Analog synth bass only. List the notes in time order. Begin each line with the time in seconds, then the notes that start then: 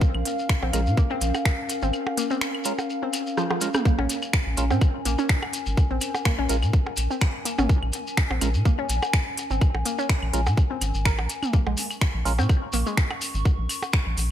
0.14 A#1
0.63 A#1
0.73 A#1
0.86 A#2
1.21 A#1
1.82 G#1
3.98 A#1
4.47 A#1
4.57 A#1
4.71 A#2
5.05 A#1
5.67 G#1
5.91 A#1
6.39 A#1
6.49 A#1
6.63 A#2
6.97 A#1
7.59 G#1
7.83 A#1
8.31 A#1
8.41 A#1
8.54 A#2
8.89 A#1
9.50 G#1
9.75 A#1
10.23 A#1
10.33 A#1
10.47 A#2
10.81 G#1
10.95 G#1
11.19 A#1
11.67 A#1
12.15 A#1
12.25 A#1
12.39 A#2
12.73 A#1
13.35 G#1
13.59 A#1
14.07 A#1
14.17 A#1